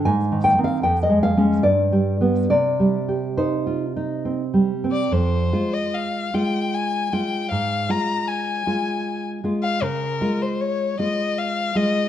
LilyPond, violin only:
\new Staff \with { instrumentName = "Violin" } { \time 3/4 \key c \minor \tempo 4 = 77 r2. | r2 r8. d''16 | \key f \minor c''8. ees''16 f''8 g''8 aes''8 g''8 | f''8 bes''8 aes''4~ aes''16 r8 f''16 |
bes'8. c''16 des''8 ees''8 f''8 ees''8 | }